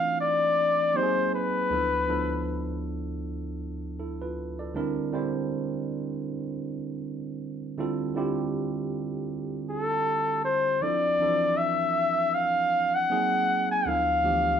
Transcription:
Already playing: E3 A3 C4 D4 D#4 F4 F5
0.21 D5
0.94 F#3 A#3 C4 D#4 G4 C5
1.03 G#4
1.35 B4
1.70 D2 F3 B3 D4 E4 A4
2.08 D2 F3 B3 D4 E4 A4
3.99 E4 A4
4.22 F4 B4
4.59 A4 D5
4.74 D3 G3 C4 D4 E4 A#4
5.12 D3 G3 C4 D4 E4 C5
7.78 D3 G3 C4 E4 F4 A4
8.15 D3 G3 C4 E4 F4 G4
9.70 A4
10.45 C5
10.81 F3 C4 D4 E4 A4 D5
11.20 E3 C4 D4 E4 A4
11.26 F3
11.57 E5
12.34 F5
12.95 F#5
13.10 F#3 A#3 C4 D#4 G#4
13.71 G#5
13.86 D2 F3 B3 D4 E4 A4 F5
14.23 D2 E3 F3 A3 D4 G4
14.30 B3

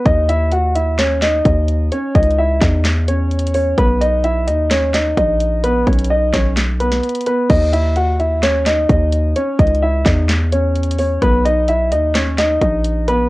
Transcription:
0.06 D#2 D#4 D#5, kick, closed hi-hat
0.29 E4 E5, closed hi-hat
0.52 F#4 F#5, closed hi-hat
0.75 E4 E5, closed hi-hat
0.99 C#4 C#5, snare, clap, closed hi-hat
1.22 D#4 D#5, snare, clap, closed hi-hat
1.45 D#2 D#4 D#5, kick, closed hi-hat
1.68 closed hi-hat
1.92 C#4 C#5, closed hi-hat
2.15 C#2 D#4 D#5, kick, closed hi-hat
2.23 closed hi-hat
2.30 closed hi-hat
2.38 E4 E5
2.61 E2 D#4 D#5, kick, snare, clap, closed hi-hat
2.85 snare, clap, closed hi-hat
3.08 C#4 C#5, closed hi-hat
3.31 closed hi-hat
3.39 closed hi-hat
3.47 closed hi-hat
3.54 C#4 C#5, open hi-hat
3.78 B1 B3 B4, kick, closed hi-hat
4.01 D#4 D#5, closed hi-hat
4.24 E4 E5, closed hi-hat
4.47 D#2 D#4 D#5, closed hi-hat
4.71 C#4 C#5, snare, clap, closed hi-hat
4.94 D#4 D#5, snare, clap, closed hi-hat
5.17 A#1 D#4 D#5, kick, closed hi-hat
5.40 closed hi-hat
5.64 B3 B4, closed hi-hat
5.87 B1 C#4 C#5, kick, closed hi-hat
5.93 closed hi-hat
5.99 closed hi-hat
6.04 closed hi-hat
6.10 D#4 D#5
6.33 B1 C#4 C#5, kick, snare, clap, closed hi-hat
6.57 snare, clap, closed hi-hat
6.80 B3 B4, closed hi-hat
6.92 snare
7.03 closed hi-hat
7.09 closed hi-hat
7.15 closed hi-hat
7.21 closed hi-hat
7.26 B3 B4, closed hi-hat
7.50 D#2 D#4 D#5, kick, closed hi-hat, crash
7.73 E4 E5, closed hi-hat
7.96 F#4 F#5, closed hi-hat
8.19 E4 E5, closed hi-hat
8.43 C#4 C#5, snare, clap, closed hi-hat
8.66 D#4 D#5, snare, clap, closed hi-hat
8.89 D#2 D#4 D#5, kick, closed hi-hat
9.12 closed hi-hat
9.36 C#4 C#5, closed hi-hat
9.59 C#2 D#4 D#5, kick, closed hi-hat
9.67 closed hi-hat
9.75 closed hi-hat
9.83 E4 E5
10.06 E2 D#4 D#5, kick, snare, clap, closed hi-hat
10.29 snare, clap, closed hi-hat
10.52 C#4 C#5, closed hi-hat
10.76 closed hi-hat
10.83 closed hi-hat
10.91 closed hi-hat
10.99 C#4 C#5, open hi-hat
11.22 B1 B3 B4, kick, closed hi-hat
11.45 D#4 D#5, closed hi-hat
11.68 E4 E5, closed hi-hat
11.92 D#2 D#4 D#5, closed hi-hat
12.15 C#4 C#5, snare, clap, closed hi-hat
12.38 D#4 D#5, snare, clap, closed hi-hat
12.62 A#1 D#4 D#5, kick, closed hi-hat
12.85 closed hi-hat
13.08 B3 B4, closed hi-hat

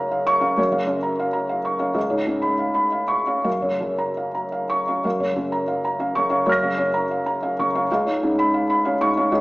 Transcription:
Already playing: F#2 C#3 C#4 C#5 F5 A#5
0.11 F5
0.27 C#6
0.41 C#4 F5
0.58 F#2 C#5
0.71 C#3 F5
0.87 C#4 C#5
1.03 A#5
1.19 F5
1.33 A#5
1.49 F5
1.65 C#6
1.79 C#4 F5
1.94 C#2 F5
2.10 G#2 C#5
2.27 G#2 C#4
2.42 B5
2.59 F5
2.74 B5
2.92 F5
3.08 C#6
3.27 C#4 F5
3.44 F#2 F5
3.62 C#3 C#5
3.80 C#3 C#4
3.98 A#5
4.17 F5
4.35 A#5
4.52 F5
4.70 C#6
4.88 C#4 F5
5.04 F#2 F5
5.20 C#3 C#5
5.36 C#3 C#4
5.52 A#5
5.68 F5
5.85 A#5
5.99 C#4 F5
6.15 C#3 C#6
6.30 C#4 F5
6.46 F#2 C#5 C#6 F6
6.52 A#6
6.63 C#3 F5
6.78 C#4 C#5
6.94 A#5
7.11 F5
7.26 A#5
7.43 C#4 F5
7.59 C#3 C#6
7.75 C#4 F5
7.91 C#2 F5
8.06 G#2 C#5
8.23 G#2 C#4
8.39 B5
8.54 F5
8.70 B5
8.85 C#4 F5
9.01 G#2 C#6
9.17 C#4 F5
9.32 C#2 C#5

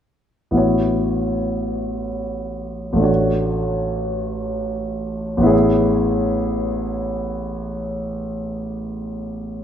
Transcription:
0.51 A1 B3 E4 F#4
0.57 C#5
2.93 A1 A3
2.99 D4 F#4
3.03 C#5
5.37 A1 B3
5.43 E4 G#4
5.48 C#5

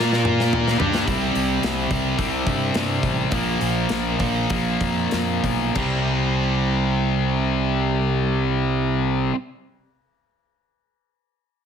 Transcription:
Already playing: A#2 A#3 F4 A#4
0.13 snare
0.25 mid tom
0.40 snare
0.53 floor tom
0.68 snare
0.79 G2 G3 D4 G4, floor tom
0.94 snare
1.05 C2 C3 G3 C4, kick, open hi-hat
1.35 C2, open hi-hat
1.63 C2, snare, open hi-hat
1.91 C2 C3 G3 C4, kick, open hi-hat
2.17 C2 C3 G3 C4, kick, open hi-hat
2.47 G2, kick, open hi-hat
2.74 G2, snare, open hi-hat
3.03 A1, kick, open hi-hat
3.32 A#1 A#2 F3 A#3, kick, open hi-hat
3.61 A#1, open hi-hat
3.89 A#1, snare, open hi-hat
4.19 A#1 A#2 F3 A#3, kick, open hi-hat
4.50 A#1 A#2 F3 A#3, kick, open hi-hat
4.81 F2, kick, open hi-hat
5.11 F2, snare, open hi-hat
5.44 B1, kick, open hi-hat
5.75 C2 C3 G3 C4, kick, crash

